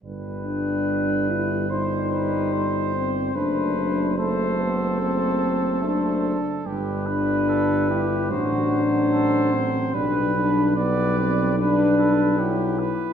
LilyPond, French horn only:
\new Staff \with { instrumentName = "French horn" } { \time 4/4 \key g \major \tempo 4 = 73 r8 d'4 e'8 ees'4. c'8 | d'8 d'8 a8 b8 c'4 d'4 | r8 d'4 e'8 d'4. c'8 | d'8 d'8 b8 c'8 d'4 e'4 | }